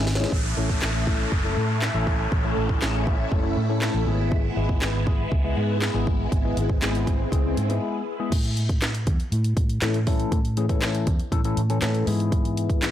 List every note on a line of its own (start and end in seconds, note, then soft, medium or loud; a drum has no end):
0.00 0.24 G#1 loud
0.00 0.13 G#5 medium
0.07 snare medium
0.07 open hi-hat medium
0.15 0.31 C#5 medium
0.15 snare loud
0.20 0.32 G#3 loud
0.20 0.32 C#4 medium
0.20 0.32 E4 medium
0.20 0.32 G#4 loud
0.20 closed hi-hat soft
0.24 snare loud
0.32 0.53 A1 medium
0.32 4.03 A3 medium
0.32 4.04 C#4 medium
0.32 8.28 E4 medium
0.32 kick loud
0.32 downlifter medium
0.57 0.78 A1 medium
0.57 0.88 A3 medium
0.57 0.88 C#4 medium
0.57 0.88 E4 medium
0.57 0.88 A4 loud
0.69 kick medium
0.82 1.24 A1 loud
0.82 snare medium
0.82 clap loud
1.07 1.30 A3 medium
1.07 1.30 C#4 medium
1.07 1.30 E4 medium
1.07 1.31 A4 medium
1.07 kick loud
1.32 1.53 F#1 loud
1.32 kick medium
1.45 1.76 A3 medium
1.45 1.76 C#4 medium
1.45 1.76 E4 medium
1.45 1.76 A4 medium
1.57 1.89 A2 medium
1.82 snare medium
1.82 clap loud
1.94 2.26 A1 medium
1.94 2.26 A3 medium
1.94 2.26 C#4 medium
1.94 2.26 E4 medium
1.94 2.26 A4 loud
2.07 kick medium
2.32 2.53 A1 loud
2.32 kick loud
2.44 2.68 A3 medium
2.44 2.68 C#4 medium
2.44 2.68 E4 medium
2.44 2.68 A4 medium
2.57 2.78 A1 medium
2.69 kick medium
2.82 3.24 A1 medium
2.82 3.13 A3 medium
2.82 3.13 C#4 medium
2.82 3.13 E4 medium
2.82 3.13 G#4 loud
2.82 snare medium
2.82 clap loud
3.07 kick loud
3.32 3.53 F#1 loud
3.32 3.55 A3 medium
3.32 3.55 C#4 medium
3.32 3.55 E4 medium
3.32 3.55 A4 loud
3.32 kick medium
3.57 3.89 A2 medium
3.69 4.00 A3 medium
3.69 4.01 C#4 medium
3.69 4.01 E4 medium
3.69 4.01 A4 loud
3.82 snare medium
3.82 clap loud
3.94 4.05 A1 medium
4.06 4.49 G#1 medium
4.06 4.47 G#3 medium
4.06 8.28 G#3 medium
4.06 4.47 B3 medium
4.06 8.28 B3 medium
4.06 4.47 E4 medium
4.06 4.47 G#4 medium
4.32 kick loud
4.32 swell medium
4.57 4.78 G#1 medium
4.57 4.88 G#3 medium
4.57 4.88 B3 medium
4.57 4.88 E4 medium
4.57 4.88 G#4 loud
4.69 kick medium
4.82 5.24 G#1 loud
4.82 snare medium
4.82 clap loud
5.07 5.30 G#3 medium
5.07 5.30 B3 medium
5.07 5.30 E4 medium
5.07 5.30 G#4 medium
5.07 kick loud
5.32 5.53 C#2 loud
5.32 kick medium
5.44 5.75 G#3 medium
5.44 5.75 B3 medium
5.44 5.76 E4 medium
5.44 5.76 G#4 medium
5.57 5.89 G#2 loud
5.82 snare medium
5.82 clap loud
5.94 6.26 G#1 medium
5.94 6.25 G#3 medium
5.94 6.26 B3 medium
5.94 6.26 E4 medium
5.94 6.26 G#4 loud
6.07 kick medium
6.32 6.53 G#1 loud
6.32 kick loud
6.32 closed hi-hat medium
6.44 6.68 G#3 medium
6.44 6.68 B3 medium
6.44 6.68 E4 medium
6.44 6.68 G#4 loud
6.57 6.78 G#1 medium
6.57 closed hi-hat medium
6.69 kick medium
6.82 7.24 G#1 medium
6.82 7.13 G#3 loud
6.82 7.13 B3 medium
6.82 7.13 E4 medium
6.82 7.13 G#4 loud
6.82 snare medium
6.82 clap loud
6.82 closed hi-hat medium
6.95 closed hi-hat medium
7.07 kick loud
7.07 closed hi-hat medium
7.32 7.53 C#2 loud
7.32 7.55 G#3 medium
7.32 7.55 B3 medium
7.32 7.55 E4 medium
7.32 7.56 G#4 loud
7.32 kick medium
7.32 closed hi-hat medium
7.57 7.78 G#2 loud
7.57 closed hi-hat medium
7.69 8.01 G#3 medium
7.69 8.01 B3 medium
7.69 8.01 E4 medium
7.69 8.01 G#4 loud
7.69 closed hi-hat medium
8.19 8.32 G#3 medium
8.19 8.32 B3 medium
8.19 8.32 E4 medium
8.19 8.32 G#4 loud
8.32 9.08 A2 loud
8.32 kick loud
8.32 closed hi-hat medium
8.32 crash loud
8.45 closed hi-hat medium
8.57 closed hi-hat loud
8.69 kick medium
8.69 closed hi-hat medium
8.82 snare medium
8.82 clap loud
8.82 closed hi-hat medium
8.95 closed hi-hat medium
9.07 9.17 E2 medium
9.07 kick loud
9.07 closed hi-hat medium
9.20 closed hi-hat soft
9.32 9.53 A2 loud
9.32 closed hi-hat medium
9.44 closed hi-hat medium
9.57 kick loud
9.57 closed hi-hat medium
9.69 closed hi-hat medium
9.82 10.24 A2 loud
9.82 9.97 E3 medium
9.82 9.98 A3 medium
9.82 9.98 C#4 medium
9.82 9.98 E4 medium
9.82 9.98 A4 medium
9.82 snare medium
9.82 clap loud
9.82 closed hi-hat loud
9.94 closed hi-hat medium
10.07 10.38 E3 loud
10.07 10.38 A3 medium
10.07 10.38 C#4 medium
10.07 10.38 E4 medium
10.07 10.38 A4 loud
10.07 kick loud
10.07 open hi-hat medium
10.20 closed hi-hat soft
10.32 11.09 A2 loud
10.32 kick loud
10.32 closed hi-hat medium
10.45 closed hi-hat medium
10.57 10.65 E3 loud
10.57 10.65 A3 medium
10.57 10.65 C#4 medium
10.57 10.65 E4 medium
10.57 10.65 G#4 loud
10.57 closed hi-hat medium
10.69 11.08 E3 loud
10.69 11.08 A3 medium
10.69 11.08 C#4 medium
10.69 11.08 E4 medium
10.69 11.09 A4 loud
10.69 kick medium
10.69 closed hi-hat medium
10.82 snare medium
10.82 clap loud
10.82 closed hi-hat medium
10.95 closed hi-hat medium
11.07 11.18 E2 medium
11.07 kick loud
11.07 closed hi-hat medium
11.20 closed hi-hat soft
11.32 11.53 A2 loud
11.32 11.40 E3 medium
11.32 11.40 A3 medium
11.32 11.40 C#4 medium
11.32 11.40 E4 medium
11.32 11.40 A4 loud
11.32 kick medium
11.32 closed hi-hat medium
11.44 11.60 E3 medium
11.44 11.60 A3 medium
11.44 11.60 C#4 medium
11.44 11.60 E4 medium
11.44 11.60 A4 loud
11.44 closed hi-hat medium
11.57 11.78 A2 medium
11.57 closed hi-hat medium
11.70 11.77 E3 medium
11.70 11.77 A3 medium
11.70 11.77 C#4 medium
11.70 11.78 E4 medium
11.70 11.78 A4 loud
11.70 closed hi-hat medium
11.82 12.03 A2 loud
11.82 12.05 E3 medium
11.82 12.05 A3 medium
11.82 12.05 C#4 medium
11.82 12.05 E4 medium
11.82 12.06 A4 loud
11.82 snare medium
11.82 clap loud
11.82 closed hi-hat loud
11.95 closed hi-hat medium
12.07 12.91 G#2 loud
12.07 12.87 E3 medium
12.07 12.87 G#3 medium
12.07 12.87 B3 medium
12.07 12.87 E4 medium
12.07 12.87 G#4 loud
12.07 open hi-hat medium
12.20 closed hi-hat soft
12.32 kick loud
12.32 closed hi-hat medium
12.45 closed hi-hat medium
12.57 closed hi-hat medium
12.70 kick medium
12.70 closed hi-hat medium
12.82 snare medium
12.82 clap loud
12.82 closed hi-hat medium